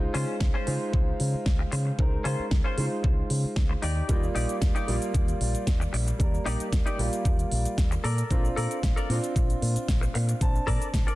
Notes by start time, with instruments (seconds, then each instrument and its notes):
Already playing: grand piano G#3 D#4 F4 C5
0.14 fingered electric bass C#3, clean electric guitar C#4 F4 C5, open hi-hat
0.40 fingered electric bass C#2, kick, snare
0.54 clean electric guitar C#4 F4 C5
0.66 fingered electric bass C#3, grand piano G#3 D#4 F4 C5, open hi-hat
0.93 fingered electric bass C#2, muted clean electric guitar stroke, kick
1.20 fingered electric bass C#3, open hi-hat
1.34 muted fingered electric bass stroke
1.46 fingered electric bass C#2, kick, snare
1.59 muted clean electric guitar stroke
1.72 fingered electric bass C#3, muted clean electric guitar stroke, open hi-hat
1.85 muted clean electric guitar stroke
1.98 fingered electric bass C#2, grand piano G#3 D#4 A#4 C5, kick
2.24 fingered electric bass C#3, clean electric guitar C#4 F4 C5, open hi-hat
2.39 muted fingered electric bass stroke
2.51 fingered electric bass C#2, kick, snare
2.64 clean electric guitar C#4 F4 C5
2.77 fingered electric bass C#3, grand piano G#3 D#4 F4 C5, open hi-hat
3.03 fingered electric bass C#2, muted clean electric guitar stroke, kick
3.30 fingered electric bass C#3, open hi-hat
3.44 muted fingered electric bass stroke
3.56 fingered electric bass C#2, kick, snare
3.69 muted clean electric guitar stroke
3.82 fingered electric bass D#2, clean electric guitar D#4 G4 D5, open hi-hat
4.08 fingered electric bass D#2, grand piano G3 A#3 F4 D5, kick, closed hi-hat, cabasa
4.23 cabasa
4.35 fingered electric bass A#1, clean electric guitar D#4 G4 D5, open hi-hat
4.49 closed hi-hat, cabasa
4.62 fingered electric bass D#2, kick, snare, closed hi-hat, cabasa
4.75 clean electric guitar D#4 G4 D5, closed hi-hat, cabasa
4.87 fingered electric bass A#1, grand piano G3 A#3 F4 D5, open hi-hat
5.02 closed hi-hat, cabasa
5.14 fingered electric bass D#2, muted clean electric guitar stroke, kick, closed hi-hat, cabasa
5.28 closed hi-hat, cabasa
5.41 fingered electric bass A#1, open hi-hat
5.54 muted fingered electric bass stroke, closed hi-hat, cabasa
5.67 fingered electric bass D#2, kick, snare, closed hi-hat, cabasa
5.80 muted clean electric guitar stroke, cabasa
5.93 fingered electric bass A#1, muted clean electric guitar stroke, open hi-hat
6.07 muted clean electric guitar stroke, closed hi-hat, cabasa
6.19 fingered electric bass D#2, grand piano G3 A#3 A#4 D5, kick, closed hi-hat, cabasa
6.34 cabasa
6.46 fingered electric bass A#1, clean electric guitar D#4 G4 D5, open hi-hat
6.60 closed hi-hat, cabasa
6.72 fingered electric bass D#2, kick, snare, closed hi-hat, cabasa
6.86 clean electric guitar D#4 G4 D5, closed hi-hat, cabasa
6.98 fingered electric bass A#1, grand piano G3 A#3 F4 D5, open hi-hat
7.13 closed hi-hat, cabasa
7.25 fingered electric bass D#2, muted clean electric guitar stroke, kick, closed hi-hat, cabasa
7.39 closed hi-hat, cabasa
7.52 fingered electric bass A#1, open hi-hat
7.65 muted fingered electric bass stroke, closed hi-hat, cabasa
7.78 fingered electric bass D#2, kick, snare, closed hi-hat, cabasa
7.91 muted clean electric guitar stroke, closed hi-hat, cabasa
8.04 fingered electric bass A#2, clean electric guitar A4 A#4 D5, open hi-hat
8.18 closed hi-hat, cabasa
8.30 fingered electric bass A#1, grand piano C4 D4 F4, kick, closed hi-hat, cabasa
8.45 cabasa
8.56 fingered electric bass A#2, clean electric guitar A4 A#4 D5, open hi-hat
8.71 closed hi-hat, cabasa
8.83 fingered electric bass A#1, kick, snare, closed hi-hat, cabasa
8.96 clean electric guitar A4 A#4 D5, closed hi-hat, cabasa
9.09 fingered electric bass A#2, grand piano C4 D4 F4, open hi-hat
9.24 closed hi-hat, cabasa
9.35 fingered electric bass A#1, muted clean electric guitar stroke, kick, closed hi-hat, cabasa
9.50 closed hi-hat, cabasa
9.62 fingered electric bass A#2, open hi-hat
9.76 muted fingered electric bass stroke, closed hi-hat, cabasa
9.88 fingered electric bass A#1, kick, snare, closed hi-hat, cabasa
10.01 muted clean electric guitar stroke, cabasa
10.14 fingered electric bass A#2, muted clean electric guitar stroke, open hi-hat
10.28 muted clean electric guitar stroke, closed hi-hat, cabasa
10.41 fingered electric bass A#1, grand piano C4 D4 A5, kick, closed hi-hat, cabasa
10.55 cabasa
10.67 fingered electric bass A#2, clean electric guitar A4 A#4 D5, kick, open hi-hat
10.82 muted fingered electric bass stroke, closed hi-hat, cabasa
10.94 fingered electric bass A#1, kick, snare, closed hi-hat, cabasa
11.07 clean electric guitar A4 A#4 D5, closed hi-hat, cabasa